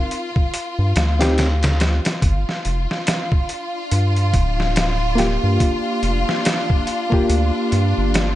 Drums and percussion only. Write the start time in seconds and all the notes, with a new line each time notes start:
0.11 closed hi-hat
0.36 kick
0.54 closed hi-hat
0.96 snare, closed hi-hat
1.21 snare, closed hi-hat
1.38 snare, closed hi-hat
1.63 snare, closed hi-hat
1.80 snare, closed hi-hat
2.05 snare, closed hi-hat
2.22 kick, closed hi-hat
2.49 snare
2.65 closed hi-hat
2.91 snare
3.07 snare, closed hi-hat
3.32 kick
3.49 closed hi-hat
3.91 closed hi-hat
4.16 closed hi-hat
4.33 kick, closed hi-hat
4.60 snare
4.76 snare, closed hi-hat
5.18 snare, closed hi-hat
5.60 kick, closed hi-hat
6.03 closed hi-hat
6.29 snare
6.45 snare, closed hi-hat
6.70 kick
6.87 closed hi-hat
7.12 kick
7.30 closed hi-hat
7.72 closed hi-hat
8.14 snare, closed hi-hat